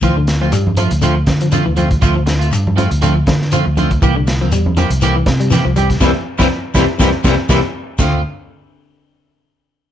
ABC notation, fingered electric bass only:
X:1
M:4/4
L:1/16
Q:"Swing 16ths" 1/4=121
K:Dm
V:1 name="Fingered electric bass" clef=bass
D,,4 G,,3 D,,3 D,3 D,,3 | D,,4 G,,3 D,,3 D,3 D,,3 | C,,4 E,,3 C,,3 C,3 C,,3 | C,, z2 C,, z2 C,, z C,, z C,, z C,, z3 |
D,,2 z12 z2 |]